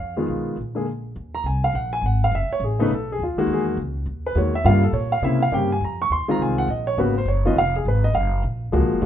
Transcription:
Already playing: upright bass F2, grand piano F5
0.17 grand piano D#3 G#3 B3 F4
0.28 upright bass B1
0.57 upright bass A#1
0.75 grand piano D3 G#3 A#3 G#4
1.16 upright bass D#2
1.35 grand piano A#5
1.44 upright bass C2, grand piano G#5
1.64 grand piano F5
1.73 upright bass A#1, grand piano F#5
1.93 grand piano G#5
2.02 upright bass G#1
2.06 grand piano F#5
2.24 grand piano F5
2.31 upright bass F#1, grand piano E5
2.49 grand piano C#5, muted upright bass stroke
2.60 upright bass A1
2.64 grand piano G#4
2.79 grand piano C#3 A3 B3 D#4 B4
2.89 upright bass B1
2.94 grand piano A4
3.12 grand piano G#4
3.19 upright bass D#2
3.23 grand piano F4
3.36 grand piano D#3 G#3 A#3 F#4, muted upright bass stroke
3.47 upright bass E2
3.53 grand piano G#4
3.77 upright bass C#2
4.06 upright bass D#2
4.26 grand piano B4
4.35 upright bass E2, grand piano D#3 G#3 A#3 F#4 C#5
4.55 grand piano E5
4.64 upright bass G2, grand piano C#3 G3 A#3 F4 F5
4.83 grand piano A4
4.93 upright bass A#2, grand piano C#5
5.12 grand piano F5
5.22 upright bass C3, grand piano C#3 A#3 C4 E4 E5
5.42 grand piano F5
5.51 upright bass G2, grand piano C#3 A#3 C4 G4 G5
5.72 grand piano G#5
5.81 upright bass F2, grand piano A#5
6.02 grand piano C#6
6.10 upright bass D#2, grand piano C6
6.28 grand piano D#3 G#3 C4 F4 A#5, muted upright bass stroke
6.39 upright bass C2, grand piano G#5
6.58 grand piano F#5
6.68 upright bass A#1, grand piano D#5
6.87 grand piano C#5
6.97 upright bass G#1, grand piano C#3 A#3 B3 F#4 B4
7.18 grand piano C5
7.25 upright bass F#1, grand piano C#5
7.45 grand piano D#3 B3 C#4 F4 D#5
7.55 upright bass F1, grand piano F5
7.76 grand piano G#4
7.85 upright bass G#1, grand piano B4
8.04 grand piano D#5
8.14 upright bass F#1, grand piano F5
8.43 upright bass A#1
8.72 upright bass C#2, grand piano F3 G#3 A#3 F#4
8.81 upright bass A#1
8.92 upright bass F#1
9.02 upright bass G#2, grand piano F3 G#3 A#3

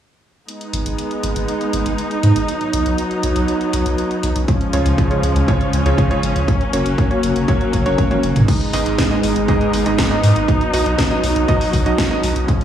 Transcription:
0.48 string section G#3 B3 D#4, closed hi-hat
0.61 closed hi-hat
0.73 analog synth bass G#1, closed hi-hat
0.86 analog synth bass G#1, closed hi-hat
0.99 closed hi-hat
1.11 closed hi-hat
1.23 analog synth bass G#1, closed hi-hat
1.36 analog synth bass G#1, closed hi-hat
1.48 closed hi-hat
1.61 closed hi-hat
1.73 analog synth bass G#1, closed hi-hat
1.86 analog synth bass G#1, closed hi-hat
1.98 closed hi-hat
2.11 closed hi-hat
2.23 analog synth bass G#2, closed hi-hat
2.36 analog synth bass G#1, closed hi-hat
2.48 string section F#3 B3, closed hi-hat
2.61 closed hi-hat
2.73 analog synth bass B1, closed hi-hat
2.86 analog synth bass B1, closed hi-hat
2.98 closed hi-hat
3.11 closed hi-hat
3.23 analog synth bass B1, closed hi-hat
3.36 analog synth bass B1, closed hi-hat
3.48 closed hi-hat
3.61 closed hi-hat
3.73 analog synth bass B1, closed hi-hat
3.86 analog synth bass B1, closed hi-hat
3.98 closed hi-hat
4.11 closed hi-hat
4.23 analog synth bass B1, closed hi-hat
4.36 analog synth bass B1, closed hi-hat
4.48 string section F3 G#3 C#4, kick, closed hi-hat
4.61 closed hi-hat
4.73 analog synth bass C#2, electric grand piano C#3 G#3 C#4 F4 C#5, closed hi-hat
4.86 analog synth bass C#2, closed hi-hat
4.98 kick, closed hi-hat
5.11 electric grand piano C#3 G#3 C#4 F4 C#5, closed hi-hat
5.23 analog synth bass C#2, closed hi-hat
5.36 analog synth bass C#2, closed hi-hat
5.48 electric grand piano C#3 G#3 C#4 F4 C#5, kick, closed hi-hat
5.61 closed hi-hat
5.73 analog synth bass C#2, closed hi-hat
5.86 analog synth bass C#2, electric grand piano C#3 G#3 C#4 F4 C#5, closed hi-hat
5.98 kick, closed hi-hat
6.11 electric grand piano C#3 G#3 C#4 F4 C#5, closed hi-hat
6.23 analog synth bass G#1, closed hi-hat
6.36 analog synth bass C#2, closed hi-hat
6.48 string section F#3 A#3, kick, closed hi-hat
6.61 closed hi-hat
6.73 analog synth bass F#1, electric grand piano A#3 C#4 F#4 C#5, closed hi-hat
6.86 analog synth bass F#1, closed hi-hat
6.98 kick, closed hi-hat
7.11 electric grand piano A#3 C#4 F#4 C#5, closed hi-hat
7.23 analog synth bass F#1, closed hi-hat
7.36 analog synth bass F#1, closed hi-hat
7.48 electric grand piano A#3 C#4 F#4 C#5, kick, closed hi-hat
7.61 closed hi-hat
7.73 analog synth bass F#1, kick, closed hi-hat
7.86 analog synth bass F#1, electric grand piano A#3 C#4 F#4 C#5, closed hi-hat
7.98 kick, closed hi-hat, high tom
8.11 electric grand piano A#3 C#4 F#4 C#5, closed hi-hat, high tom
8.23 analog synth bass F#1, closed hi-hat
8.36 analog synth bass F#1, closed hi-hat, mid tom
8.48 string section G#3 B3 D#4, kick, closed hi-hat, crash
8.61 closed hi-hat
8.73 analog synth bass G#1, electric grand piano G#2 B3 D#4 G#4 D#5, open hi-hat
8.86 analog synth bass G#1, closed hi-hat
8.98 kick, snare, closed hi-hat
9.11 electric grand piano G#2 B3 D#4 G#4 D#5, closed hi-hat
9.23 analog synth bass G#1, open hi-hat
9.36 analog synth bass G#1, closed hi-hat
9.48 electric grand piano G#2 B3 D#4 G#4 D#5, kick, closed hi-hat
9.61 closed hi-hat
9.73 analog synth bass G#1, open hi-hat
9.86 analog synth bass G#1, electric grand piano G#2 B3 D#4 G#4 D#5, closed hi-hat
9.98 kick, snare, closed hi-hat
10.11 electric grand piano G#2 B3 D#4 G#4 D#5, closed hi-hat
10.23 analog synth bass G#2, open hi-hat
10.36 analog synth bass G#1, closed hi-hat
10.48 string section F#3, kick, closed hi-hat
10.61 closed hi-hat
10.73 analog synth bass B1, electric grand piano B2 B3 D#4 F#4 D#5, open hi-hat
10.86 analog synth bass B1, closed hi-hat
10.98 kick, snare, closed hi-hat
11.11 electric grand piano B2 B3 D#4 F#4 D#5, closed hi-hat
11.23 analog synth bass B1, open hi-hat
11.36 analog synth bass B1, closed hi-hat
11.48 electric grand piano B2 B3 D#4 F#4 D#5, kick, closed hi-hat
11.61 open hi-hat
11.73 analog synth bass B1, kick, open hi-hat
11.86 analog synth bass B1, electric grand piano B2 B3 D#4 F#4 D#5, closed hi-hat
11.98 kick, snare, closed hi-hat
12.11 electric grand piano B2 B3 D#4 F#4 D#5, closed hi-hat
12.23 analog synth bass B1, open hi-hat
12.36 analog synth bass B1, closed hi-hat
12.48 string section F3 G#3 C#4, kick, closed hi-hat
12.61 closed hi-hat

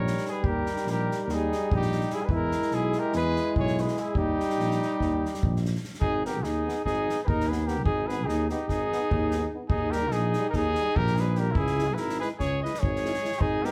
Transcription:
Already playing: tuba A#1, trombone G3, euphonium D#4, trumpet A#4, cornet C#5
0.07 snare
0.17 snare
0.25 trumpet G#4, snare
0.31 cornet B4
0.43 tuba D#2, trumpet G4, kick
0.48 cornet A#4
0.66 snare
0.76 snare
0.85 tuba A#1, snare
0.90 trumpet G4, cornet A#4
1.11 snare
1.21 trumpet G4, cornet A#4
1.27 tuba D#2, snare
1.31 trumpet D#4, cornet G#4
1.52 snare
1.71 tuba A#1, trumpet D#4, kick
1.76 cornet G4
1.82 snare
1.92 snare
2.01 snare
2.10 trumpet E4, cornet G#4, snare
2.22 trumpet G#4, cornet B4
2.29 tuba E2, trombone G#3, euphonium E4, trumpet E4, kick
2.35 cornet A#4
2.51 snare
2.62 snare
2.71 tuba B1, trumpet E4, cornet G#4, snare
2.92 snare
2.99 trumpet G4, cornet A#4
3.13 tuba E2, trumpet G#4, cornet B4, snare
3.36 snare
3.56 tuba B1, trumpet G#4, cornet C#5, kick
3.67 snare
3.78 trumpet G#4, cornet B4, snare
3.88 snare
3.97 trumpet E4, cornet G#4, snare
4.14 tuba D#2, trombone G3, euphonium D#4, trumpet D#4, kick
4.18 cornet G4
4.40 snare
4.50 snare
4.57 tuba A#1, snare
4.71 snare
4.82 snare
5.00 tuba D#2, kick, snare
5.25 snare
5.34 snare
5.43 tuba A#1, kick
5.56 snare
5.65 snare
5.75 snare
5.84 snare
5.94 snare
6.00 tuba G#1, trumpet D#4, cornet G#4, kick
6.24 trombone B3, euphonium D#4, trumpet G4, cornet A#4, snare
6.41 tuba D#2, trumpet D#4, cornet G#4, snare
6.66 trombone B3, euphonium D#4, snare
6.85 tuba G#1, trumpet D#4, cornet G#4, kick, snare
7.09 trombone B3, euphonium D#4, snare
7.23 trumpet G#4, cornet A#4 B4
7.27 tuba D#2, trumpet D#4, kick
7.40 snare
7.47 trombone B3, euphonium D#4, trumpet G#4, cornet B4
7.52 snare
7.66 trombone B3, euphonium D#4, trumpet G4, cornet A#4, snare
7.85 tuba G#1, trumpet D#4, cornet G#4, kick
8.07 trombone B3, euphonium D#4, trumpet G#4, cornet B4, snare
8.25 tuba D#2, trumpet D#4, cornet G#4
8.29 snare
8.48 trombone B3, trumpet D#4, cornet G4, snare
8.52 euphonium D#4
8.68 tuba G#1, trumpet D#4, cornet G#4, kick, snare
8.92 trombone B3, euphonium D#4, snare
9.11 tuba D#2, kick
9.31 trombone B3, euphonium D#4, snare
9.52 trombone B3, euphonium D#4
9.68 tuba D#2, trumpet D#4, cornet G#4, kick
9.91 trombone G3, euphonium D#4, trumpet G4, cornet A#4, snare
10.09 tuba A#1, trumpet D#4, cornet G#4, snare
10.33 euphonium D#4, snare
10.38 trombone G3
10.47 trumpet D#4 G4, cornet A#4
10.53 tuba D#2, cornet G#4, kick, snare
10.75 snare
10.79 trombone G3, euphonium D#4
10.94 tuba A#1, trumpet G4, cornet A#4, kick
11.07 snare
11.15 trombone G3, euphonium D#4, trumpet G#4, snare
11.20 cornet B4
11.35 trombone G3, euphonium D#4, trumpet G4, snare
11.40 cornet A#4
11.51 tuba C#2, trumpet E4, kick
11.57 cornet G#4
11.67 snare
11.77 trombone G#3, euphonium E4, snare
11.88 trumpet G#4
11.94 tuba G#1, trumpet E4, cornet B4, snare
12.00 cornet A#4
12.09 snare
12.20 trombone G#3, euphonium E4, trumpet G#4, cornet B4, snare
12.38 tuba C#2, trumpet G#4, cornet C#5, kick, snare
12.62 trombone G#3, euphonium E4, trumpet B4, cornet D#5, snare
12.74 snare
12.80 tuba G#1, trumpet G#4, cornet C#5, kick
12.96 snare
13.04 trombone G#3, euphonium E4, snare
13.14 snare
13.21 trombone G#3, euphonium E4, snare
13.32 snare
13.40 tuba G#1, trumpet D#4, cornet G#4, kick
13.63 trombone G#3, euphonium B3, trumpet G4, cornet A#4, snare

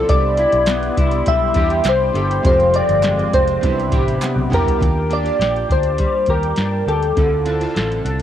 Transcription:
Already playing: clean electric guitar F3 C4 D4 A4, synth keys C4 E4 F4 A4
0.08 fingered electric bass C2, synth keys B3 D4 E4 G4 D5, analog synth pad G4 E5 B5 C6, kick, closed hi-hat
0.37 clean electric guitar E4, closed hi-hat
0.53 fingered electric bass B1, closed hi-hat
0.66 clean electric guitar B3, snare, clap, closed hi-hat
0.83 closed hi-hat
0.97 fingered electric bass C2, clean electric guitar E4, kick, closed hi-hat
1.12 closed hi-hat
1.26 fingered electric bass B1, clean electric guitar G3, synth keys E5, kick, closed hi-hat
1.54 fingered electric bass E2, synth keys B3 D4 E4 G4, clean electric guitar G4, kick, closed hi-hat
1.70 closed hi-hat
1.84 fingered electric bass C2, snare, clap, closed hi-hat
1.89 synth keys C5
2.13 fingered electric bass G1, synth keys B3 D4 E4 A4, clean electric guitar G4, closed hi-hat
2.31 closed hi-hat
2.43 fingered electric bass F1, clean electric guitar F2, synth keys G#3 C4 F4 G4 C5, analog synth pad G#3 F5 G5, kick, closed hi-hat
2.60 closed hi-hat
2.74 clean electric guitar C4, synth keys D5, closed hi-hat
2.89 fingered electric bass G1, closed hi-hat
3.03 clean electric guitar G#3, snare, clap, closed hi-hat
3.19 closed hi-hat
3.33 fingered electric bass F1, clean electric guitar C4, synth keys C5, kick, closed hi-hat
3.48 closed hi-hat
3.61 fingered electric bass C2, clean electric guitar C3, synth keys B3 D4 E4 G4, analog synth pad G4 E5 B5, kick, closed hi-hat
3.80 closed hi-hat
3.91 fingered electric bass A1, synth keys B3 D4 E4 G4, clean electric guitar G4, kick, closed hi-hat
4.08 closed hi-hat
4.22 clean electric guitar B3, snare, clap, closed hi-hat
4.36 fingered electric bass B1, high tom
4.50 fingered electric bass B1, synth keys B3 D4 E4 G4, clean electric guitar G4, closed hi-hat, mid tom
4.54 synth keys A#4
4.65 fingered electric bass C2, closed hi-hat, floor tom
4.78 fingered electric bass D#2, synth keys A#3 D4 F4 G4, kick
4.82 closed hi-hat
5.09 synth keys A#3 D4 F4 G4 D5, clean electric guitar D4, closed hi-hat
5.23 synth keys A#3 D4 F4 G4, closed hi-hat
5.39 fingered electric bass A#1, clean electric guitar G4, snare, closed hi-hat
5.56 closed hi-hat
5.69 fingered electric bass D2, clean electric guitar D4, synth keys C5, kick, closed hi-hat
5.83 closed hi-hat
5.98 clean electric guitar G3, kick, closed hi-hat
6.26 fingered electric bass D#2, clean electric guitar G4, synth keys A#4, kick, closed hi-hat
6.43 closed hi-hat
6.56 fingered electric bass G2, clean electric guitar D4, snare, closed hi-hat
6.87 fingered electric bass D2, clean electric guitar G4, synth keys A4, closed hi-hat
7.03 closed hi-hat
7.16 fingered electric bass D2, clean electric guitar D3, synth keys C4 E4 F4 A4, kick, closed hi-hat
7.45 synth keys C4 E4 F4 A4, clean electric guitar D4, closed hi-hat
7.60 synth keys C4 E4 F4 A4, closed hi-hat
7.75 fingered electric bass A1, clean electric guitar A4, snare, closed hi-hat
7.92 closed hi-hat
8.04 fingered electric bass C2, clean electric guitar D4, closed hi-hat

